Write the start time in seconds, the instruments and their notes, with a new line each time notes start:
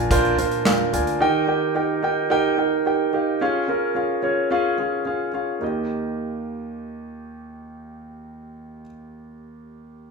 Already playing: upright bass A#1, grand piano A#2 D4 F4 A#4 F5 G#5, downlifter
0.11 grand piano D4 F4 A#4 C5, kick, closed hi-hat
0.25 closed hi-hat
0.38 upright bass A#1, grand piano D4 F4 A#4 C5, closed hi-hat
0.52 closed hi-hat
0.65 grand piano D4 F4 A#4 F5, snare, clap
0.93 upright bass D2, grand piano D4 F4 A#4 G#5, closed hi-hat
1.07 closed hi-hat
1.21 grand piano D#3 D#4 G4 A#4 G5
1.48 grand piano D#4 G4 A#4 G5
1.75 grand piano D#4 G4 A#4 G5
2.03 grand piano D#4 G4 A#4 G5
2.30 grand piano D#4 G4 A#4 G5
2.58 grand piano D#4 G4 A#4 G5
2.86 grand piano D#4 G4 A#4 G5
3.13 grand piano D#4 G4 A#4 F5
3.41 grand piano C#4 F4 G#4 F5
3.68 grand piano C#4 F4 G#4 A#4
3.95 grand piano C#4 F4 G#4 F5
4.23 grand piano C#4 F4 G#4 C#5
4.51 grand piano C#4 F4 G#4 F5
4.78 grand piano C#4 F4 G#4 F5
5.06 grand piano C#4 F4 G#4 F5
5.33 grand piano C#4 F4 G#4 F5
5.59 grand piano D#2 A#3 D#4 G4
5.64 grand piano D#5